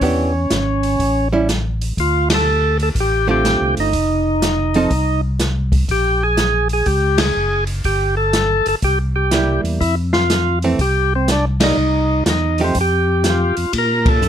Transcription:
0.00 0.47 E2 medium
0.00 0.31 E3 soft
0.00 0.31 B3 soft
0.00 1.28 C#4 medium
0.00 0.31 D4 soft
0.00 0.31 G4 soft
0.00 kick soft
0.00 open hi-hat soft
0.50 0.96 G#1 medium
0.50 snare medium
0.50 closed hi-hat soft
0.83 open hi-hat soft
0.99 1.93 A1 medium
0.99 kick soft
0.99 open hi-hat soft
1.33 1.47 G3 medium
1.33 1.47 C#4 medium
1.33 1.47 E4 medium
1.49 snare soft
1.49 closed hi-hat soft
1.81 open hi-hat soft
1.97 2.91 D2 medium
1.97 2.29 F4 medium
1.97 kick soft
1.97 open hi-hat soft
2.30 snare medium
2.30 ride medium
2.34 2.78 A4 medium
2.80 2.89 A4 medium
2.80 open hi-hat soft
2.95 3.56 A1 medium
2.95 kick soft
2.95 open hi-hat soft
3.00 3.28 G4 medium
3.27 3.90 D3 soft
3.27 3.90 A3 medium
3.27 3.90 C4 medium
3.27 3.90 F4 medium
3.27 3.75 G4 loud
3.45 snare medium
3.45 closed hi-hat soft
3.60 3.76 C2 medium
3.77 3.92 G1 medium
3.77 5.21 D#4 medium
3.77 open hi-hat soft
3.93 4.87 F1 medium
3.93 kick soft
3.93 open hi-hat soft
4.42 snare medium
4.42 closed hi-hat soft
4.74 4.90 F3 medium
4.74 4.90 C4 medium
4.74 4.90 D#4 medium
4.74 4.90 A4 medium
4.74 open hi-hat soft
4.91 5.85 C2 medium
4.91 kick soft
4.91 open hi-hat soft
5.40 snare medium
5.40 closed hi-hat soft
5.72 kick medium
5.72 open hi-hat soft
5.88 6.83 A#1 medium
5.88 6.23 G4 medium
5.88 kick soft
5.88 open hi-hat soft
6.23 6.68 G#4 medium
6.37 snare medium
6.37 closed hi-hat soft
6.69 6.87 G#4 medium
6.69 open hi-hat soft
6.86 7.32 C#2 medium
6.86 7.20 G4 medium
6.86 kick soft
6.86 open hi-hat soft
7.18 7.64 G#4 medium
7.18 snare medium
7.18 ride medium
7.36 7.81 F#1 medium
7.67 open hi-hat soft
7.84 8.62 G1 medium
7.84 8.15 G4 medium
7.84 kick soft
7.84 open hi-hat soft
8.17 8.67 A4 medium
8.33 snare medium
8.33 closed hi-hat soft
8.66 8.75 G1 soft
8.66 8.75 A4 medium
8.66 open hi-hat soft
8.82 9.60 C2 medium
8.82 8.99 G4 medium
8.82 kick soft
8.82 open hi-hat soft
9.16 9.61 G4 medium
9.31 9.81 G3 soft
9.31 9.82 A#3 medium
9.31 9.82 E4 medium
9.31 snare medium
9.31 closed hi-hat soft
9.64 9.79 E2 medium
9.64 open hi-hat soft
9.81 10.75 F2 medium
9.81 9.95 E4 medium
9.81 kick soft
9.81 open hi-hat soft
10.13 10.59 F4 loud
10.13 snare medium
10.30 snare medium
10.30 closed hi-hat soft
10.62 10.78 E3 medium
10.62 10.78 A3 medium
10.62 10.79 C4 medium
10.62 open hi-hat soft
10.79 11.73 C2 medium
10.79 11.13 G4 loud
10.79 kick soft
10.79 open hi-hat soft
11.15 11.31 C4 medium
11.28 11.45 D4 medium
11.28 snare medium
11.28 closed hi-hat soft
11.60 11.75 G3 medium
11.60 11.76 A#3 medium
11.60 11.76 D#4 medium
11.60 12.24 D#4 medium
11.60 snare medium
11.60 ride medium
11.77 12.23 C2 medium
12.26 12.72 E2 medium
12.26 12.61 D#4 medium
12.26 snare medium
12.26 closed hi-hat soft
12.58 12.74 F3 soft
12.58 12.75 A3 medium
12.58 12.75 D#4 medium
12.58 12.75 G4 medium
12.58 open hi-hat soft
12.64 12.79 C4 medium
12.75 13.53 F2 medium
12.75 kick soft
12.75 open hi-hat soft
12.81 13.55 G4 medium
13.24 snare medium
13.24 closed hi-hat soft
13.29 13.73 F4 medium
13.57 13.66 F2 soft
13.57 open hi-hat soft
13.73 14.21 A#2 medium
13.73 kick soft
13.73 ride medium
13.78 14.09 A#4 medium
14.06 14.29 A4 medium
14.06 kick medium
14.06 ride medium
14.22 14.29 F#2 medium
14.22 hi-hat pedal medium

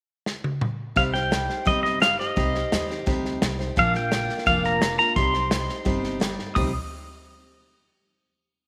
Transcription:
0.26 snare medium
0.44 high tom medium
0.61 mid tom medium
0.96 1.46 C2 medium
0.96 1.14 C3 medium
0.96 1.14 G3 medium
0.96 1.14 D#4 medium
0.96 1.14 G4 medium
0.96 1.13 C5 medium
0.96 1.02 F5 medium
0.96 kick medium
0.96 snare soft
1.14 1.31 D#4 soft
1.14 1.32 G4 soft
1.14 1.31 C5 soft
1.14 1.66 G5 medium
1.14 snare soft
1.31 1.49 G3 soft
1.31 1.49 D#4 medium
1.31 1.48 G4 medium
1.31 1.47 C5 medium
1.31 snare medium
1.31 hi-hat pedal medium
1.48 1.65 D#4 soft
1.48 1.65 G4 soft
1.48 1.66 C5 soft
1.48 snare soft
1.65 2.16 G1 medium
1.65 2.01 C3 medium
1.65 1.99 G3 medium
1.65 2.00 D#4 medium
1.65 2.01 G4 medium
1.65 2.02 C5 medium
1.65 1.82 D#5 medium
1.65 kick medium
1.65 snare soft
1.83 2.01 D#5 medium
1.83 snare soft
2.00 2.18 G3 medium
2.00 2.19 D#4 medium
2.00 2.19 G4 medium
2.00 2.18 C5 medium
2.00 2.19 F5 medium
2.00 snare loud
2.00 hi-hat pedal medium
2.19 2.35 D#4 soft
2.19 2.36 G4 soft
2.19 2.36 C5 soft
2.19 2.85 D#5 medium
2.19 snare soft
2.36 2.62 C2 medium
2.36 2.54 C3 medium
2.36 2.54 G3 medium
2.36 2.54 D#4 medium
2.36 2.54 G4 medium
2.36 2.54 C5 medium
2.36 kick medium
2.36 snare soft
2.55 2.71 D#4 soft
2.55 2.72 G4 soft
2.55 2.72 C5 soft
2.55 snare soft
2.72 3.02 D#2 medium
2.72 2.89 G3 medium
2.72 2.90 D#4 medium
2.72 2.89 G4 medium
2.72 2.88 C5 medium
2.72 snare medium
2.72 hi-hat pedal medium
2.89 3.05 D#4 soft
2.89 3.06 G4 soft
2.89 3.06 C5 medium
2.89 snare soft
3.06 3.37 D2 medium
3.06 3.41 C3 medium
3.06 3.40 G3 medium
3.06 3.42 D#4 medium
3.06 3.42 G4 medium
3.06 3.42 C5 medium
3.06 kick loud
3.06 snare soft
3.25 snare soft
3.42 3.72 C2 medium
3.42 3.59 G3 medium
3.42 3.59 D#4 medium
3.42 3.58 G4 medium
3.42 3.58 C5 medium
3.42 snare loud
3.42 hi-hat pedal medium
3.59 3.77 D#4 soft
3.59 3.77 G4 soft
3.59 3.77 C5 soft
3.59 snare soft
3.76 4.26 A#1 medium
3.76 3.94 A#2 medium
3.76 3.94 F3 medium
3.76 3.95 A#3 medium
3.76 3.94 D4 medium
3.76 3.93 F4 medium
3.76 3.92 A#4 medium
3.76 3.96 F5 medium
3.76 kick medium
3.76 snare soft
3.94 4.10 A#3 soft
3.94 4.12 D4 soft
3.94 4.12 F4 soft
3.94 4.11 A#4 soft
3.94 4.46 G5 medium
3.94 snare soft
4.11 4.45 A#3 medium
4.11 4.46 D4 medium
4.11 4.46 F4 medium
4.11 4.47 A#4 medium
4.11 snare medium
4.11 hi-hat pedal medium
4.29 snare soft
4.38 snare soft
4.46 4.96 F1 medium
4.46 4.81 A#2 medium
4.46 4.81 F3 medium
4.46 4.80 A#3 medium
4.46 4.81 D4 medium
4.46 4.81 F4 medium
4.46 4.82 A#4 medium
4.46 4.65 F5 medium
4.46 kick loud
4.46 snare soft
4.64 4.98 A#5 medium
4.64 snare soft
4.81 4.99 A#3 medium
4.81 4.99 D4 medium
4.81 4.98 F4 medium
4.81 4.97 A#4 medium
4.81 snare loud
4.81 hi-hat pedal medium
4.98 5.16 A#3 soft
4.98 5.17 D4 soft
4.98 5.17 F4 soft
4.98 5.16 A#4 soft
4.98 5.16 A#5 medium
4.98 snare soft
5.16 5.66 C2 medium
5.16 5.34 C3 medium
5.16 5.34 G3 medium
5.16 5.34 D#4 medium
5.16 5.35 G4 medium
5.16 5.33 C5 medium
5.16 6.17 C6 medium
5.16 kick loud
5.16 snare soft
5.34 5.51 D#4 soft
5.34 5.51 G4 soft
5.34 5.52 C5 soft
5.34 snare soft
5.51 5.69 G3 soft
5.51 5.69 D#4 medium
5.51 5.69 G4 medium
5.51 5.67 C5 medium
5.51 snare medium
5.51 hi-hat pedal medium
5.68 5.85 D#4 soft
5.68 5.85 G4 soft
5.68 5.85 C5 soft
5.68 snare soft
5.85 6.35 G1 medium
5.85 6.20 C3 medium
5.85 6.19 G3 medium
5.85 6.20 D#4 medium
5.85 6.21 G4 medium
5.85 6.21 C5 medium
5.85 kick loud
5.85 snare soft
6.04 snare soft
6.20 6.55 G3 medium
6.20 6.55 D#4 medium
6.20 6.56 G4 medium
6.20 6.56 C5 medium
6.20 snare loud
6.20 hi-hat pedal medium
6.39 snare soft
6.55 6.72 C2 medium
6.55 6.70 C3 medium
6.55 6.70 G3 medium
6.55 6.70 D#4 medium
6.55 6.71 G4 medium
6.55 6.71 C5 medium
6.55 6.72 D#6 medium
6.55 kick medium
6.55 floor tom medium
6.55 open hi-hat medium

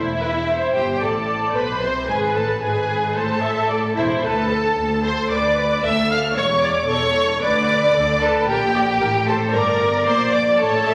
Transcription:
0.00 0.71 E1 medium
0.00 0.71 E2 soft
0.00 0.71 E4 medium
0.00 0.71 E5 medium
0.21 0.29 B4 soft
0.49 1.01 C5 soft
0.74 1.01 G1 soft
0.74 1.01 G2 soft
0.74 1.01 G4 soft
0.74 1.01 G5 medium
1.01 1.54 A1 soft
1.01 1.54 A2 soft
1.01 1.55 A4 soft
1.01 1.56 D5 soft
1.01 1.55 A5 medium
1.54 1.82 B1 medium
1.54 1.82 B2 soft
1.54 1.82 B4 soft
1.54 2.09 C5 soft
1.54 1.81 B5 medium
1.81 2.09 C2 soft
1.81 2.09 C3 soft
1.81 2.09 C5 soft
1.81 2.09 C6 medium
2.08 2.36 G#1 medium
2.08 2.36 G#2 medium
2.08 2.35 G#4 medium
2.08 2.62 B4 medium
2.08 2.17 G#5 medium
2.35 2.63 A1 medium
2.35 2.62 A2 soft
2.35 2.63 A4 soft
2.35 2.62 A5 medium
2.62 3.16 G#1 medium
2.62 3.16 G#2 medium
2.62 3.15 G#4 medium
2.62 3.15 B4 soft
2.62 3.15 G#5 medium
3.15 3.97 A1 medium
3.15 3.97 A2 medium
3.15 3.97 A4 medium
3.15 3.43 C5 soft
3.15 3.96 A5 medium
3.43 3.70 E5 soft
3.70 3.78 D5 medium
3.96 4.24 E1 soft
3.96 4.24 E2 medium
3.96 4.24 E4 medium
3.96 4.24 C5 medium
3.96 4.05 E5 medium
4.24 4.72 D2 medium
4.24 5.05 A4 medium
4.24 4.52 B4 medium
4.24 5.03 A5 medium
4.52 5.32 A4 soft
4.77 5.25 D2 medium
5.05 5.31 C5 medium
5.05 5.31 C6 medium
5.31 5.78 D2 medium
5.31 5.84 B4 medium
5.31 5.83 D5 medium
5.31 5.84 D6 medium
5.84 6.31 D2 medium
5.84 6.37 A4 medium
5.84 6.10 E5 medium
5.84 6.10 E6 medium
6.11 6.19 F5 medium
6.11 6.37 F6 medium
6.36 6.84 E1 medium
6.36 6.83 E2 medium
6.36 6.89 C#5 medium
6.36 6.45 C#5 medium
6.36 6.63 C#6 medium
6.63 6.71 D5 medium
6.63 6.90 D6 medium
6.89 7.36 E1 medium
6.89 7.36 E2 medium
6.89 7.41 A4 medium
6.89 7.42 C#5 medium
6.89 7.42 C#6 medium
7.42 7.89 D2 medium
7.42 7.89 D3 medium
7.42 7.95 B4 medium
7.42 8.21 D5 medium
7.42 8.20 D6 medium
7.95 8.43 D2 medium
7.95 8.43 D3 medium
7.95 8.22 A4 medium
8.22 8.49 A4 medium
8.22 8.50 B4 medium
8.22 8.49 A5 medium
8.48 8.98 A#1 medium
8.48 8.98 A#2 medium
8.48 9.27 G4 medium
8.48 8.57 A#4 medium
8.48 9.26 G5 medium
8.75 8.83 D5 medium
9.01 9.54 A1 medium
9.01 9.54 A2 medium
9.01 9.10 A#4 medium
9.28 9.55 A4 medium
9.28 9.54 C5 medium
9.28 9.36 A5 medium
9.54 10.07 G1 medium
9.54 10.07 G2 medium
9.54 10.07 A#4 medium
9.54 10.59 D5 medium
9.54 10.06 A#5 medium
10.06 10.60 A#1 medium
10.06 10.59 A#2 medium
10.06 10.33 C5 medium
10.06 10.33 C6 medium
10.33 10.59 D5 medium
10.33 10.41 D6 medium
10.59 10.94 A1 medium
10.59 10.94 A2 medium
10.59 10.94 A4 medium
10.59 10.86 C#5 medium
10.59 10.94 A5 loud
10.86 10.94 E5 medium

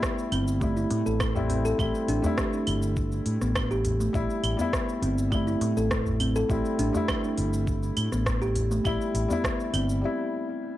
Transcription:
0.00 0.60 G3 medium
0.00 0.31 B3 medium
0.00 0.64 E4 loud
0.00 kick loud
0.00 cross-stick loud
0.00 cabasa medium
0.18 cabasa soft
0.32 0.84 G1 medium
0.32 0.47 C4 medium
0.32 open hi-hat medium
0.32 claves medium
0.48 cabasa medium
0.60 1.32 G3 medium
0.60 0.75 A3 medium
0.60 1.34 E4 medium
0.60 kick loud
0.60 cabasa medium
0.77 0.85 E4 medium
0.77 cabasa soft
0.90 1.02 A2 medium
0.90 1.05 A3 medium
0.90 open hi-hat medium
1.06 1.72 A1 medium
1.06 1.20 A4 medium
1.06 cabasa medium
1.20 kick loud
1.20 cross-stick medium
1.20 cabasa medium
1.20 claves medium
1.35 1.75 G3 medium
1.35 1.76 C4 medium
1.35 1.76 E4 medium
1.35 udu medium
1.35 cabasa soft
1.49 1.64 C4 medium
1.49 open hi-hat medium
1.49 udu medium
1.65 1.78 A4 medium
1.65 cabasa medium
1.78 1.90 A1 loud
1.78 2.20 G3 medium
1.78 1.94 A3 medium
1.78 2.20 C4 medium
1.78 2.21 E4 medium
1.78 kick loud
1.78 cabasa medium
1.78 claves medium
1.95 cabasa soft
2.08 2.19 A1 medium
2.08 2.23 D4 medium
2.08 open hi-hat medium
2.22 4.10 G3 medium
2.22 2.32 A3 medium
2.22 udu medium
2.22 cabasa medium
2.26 4.12 E4 medium
2.38 2.96 G4 medium
2.38 kick loud
2.38 cross-stick loud
2.38 cabasa medium
2.53 cabasa soft
2.67 3.19 G1 medium
2.67 open hi-hat medium
2.67 claves medium
2.82 cabasa medium
2.97 kick loud
2.97 cabasa medium
3.12 cabasa soft
3.26 3.37 A2 medium
3.26 open hi-hat medium
3.41 4.07 A1 medium
3.41 3.70 B3 medium
3.41 cross-stick soft
3.41 cabasa medium
3.56 kick loud
3.56 cross-stick medium
3.56 cabasa medium
3.56 claves medium
3.71 3.84 G4 medium
3.71 cabasa soft
3.85 open hi-hat medium
3.85 udu medium
4.00 4.58 A3 medium
4.00 cabasa medium
4.13 4.25 A1 medium
4.13 4.55 G3 medium
4.13 4.56 E4 loud
4.13 kick loud
4.13 cabasa medium
4.30 cabasa soft
4.43 4.54 A1 medium
4.43 open hi-hat medium
4.43 claves medium
4.57 5.28 G3 medium
4.57 5.01 B3 medium
4.57 udu medium
4.57 cabasa medium
4.61 5.30 E4 medium
4.73 kick loud
4.73 cross-stick loud
4.73 cabasa medium
4.89 cabasa soft
5.02 5.54 G1 medium
5.02 5.17 C4 medium
5.02 open hi-hat medium
5.18 cabasa medium
5.30 6.46 G3 medium
5.30 5.46 A3 loud
5.30 kick loud
5.30 cabasa medium
5.30 claves medium
5.34 6.48 E4 medium
5.47 5.55 E4 medium
5.47 cabasa soft
5.61 5.72 A2 medium
5.61 5.75 A3 loud
5.61 open hi-hat medium
5.77 6.42 A1 medium
5.77 5.90 A4 medium
5.77 cabasa medium
5.91 kick loud
5.91 cross-stick medium
5.91 cabasa soft
6.06 udu medium
6.06 cabasa soft
6.20 6.35 C4 medium
6.20 open hi-hat medium
6.20 udu medium
6.20 claves medium
6.36 6.49 A4 loud
6.36 cabasa medium
6.49 6.60 A1 loud
6.49 6.91 G3 medium
6.49 6.64 A3 medium
6.49 6.91 C4 medium
6.49 6.91 E4 medium
6.49 kick loud
6.49 cabasa medium
6.65 cabasa soft
6.79 6.90 A1 medium
6.79 6.94 D4 medium
6.79 open hi-hat medium
6.93 8.81 G3 medium
6.93 7.03 A3 loud
6.93 udu medium
6.93 cabasa medium
6.97 8.83 E4 loud
7.08 7.66 G4 medium
7.08 kick medium
7.08 cross-stick loud
7.08 cabasa medium
7.08 claves medium
7.24 cabasa soft
7.38 7.90 G1 loud
7.38 open hi-hat medium
7.53 cabasa medium
7.67 kick medium
7.67 cabasa medium
7.83 cabasa soft
7.97 8.08 A2 medium
7.97 open hi-hat medium
7.97 claves medium
8.12 8.78 A1 medium
8.12 8.40 B3 medium
8.12 cross-stick soft
8.12 cabasa medium
8.26 kick loud
8.26 cross-stick medium
8.26 cabasa medium
8.42 8.55 G4 medium
8.42 cabasa soft
8.55 open hi-hat medium
8.55 udu medium
8.71 9.28 A3 medium
8.71 cabasa medium
8.84 8.96 A1 loud
8.84 9.26 G3 medium
8.84 9.27 E4 loud
8.84 kick medium
8.84 cabasa medium
8.84 claves medium
9.01 cabasa soft
9.14 9.25 A1 medium
9.14 open hi-hat medium
9.28 9.99 G3 medium
9.28 9.72 B3 medium
9.28 udu medium
9.28 cabasa medium
9.32 10.01 E4 medium
9.44 kick loud
9.44 cross-stick loud
9.44 cabasa medium
9.60 cabasa soft
9.73 10.03 G1 loud
9.73 9.88 C4 medium
9.73 open hi-hat medium
9.73 claves medium
9.89 cabasa medium
10.01 10.73 G3 medium
10.01 10.75 E4 medium

